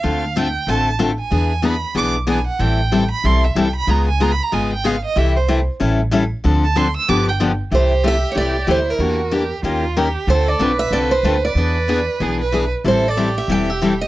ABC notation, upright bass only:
X:1
M:4/4
L:1/8
Q:"Swing" 1/4=188
K:C
V:1 name="Upright bass" clef=bass
D,,4 A,,,4 | E,,4 B,,,4 | A,,,4 B,,,2 C,,2 | _D,,4 _A,,,4 |
C,,4 A,,,4 | D,,4 G,,,4 | C,,4 C,,2 D,,2 | E,,4 _E,,4 |
D,,2 B,,,2 C,,2 D,,2 | E,,4 B,,,4 | A,,,4 E,,,4 |]